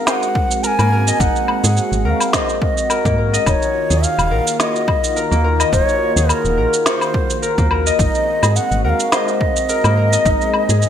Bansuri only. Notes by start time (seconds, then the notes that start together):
0.07 G#5
0.12 F#5
0.64 G#5 A#5
1.20 F#5
2.05 F#5
2.10 F5
2.33 D#5
2.62 D#5
3.47 C#5
4.03 F5
4.60 D#5
5.73 C#5
6.30 A#4
6.86 C5
8.00 D#5
8.56 F#5
8.84 F#5
8.89 F5
9.13 D#5 F5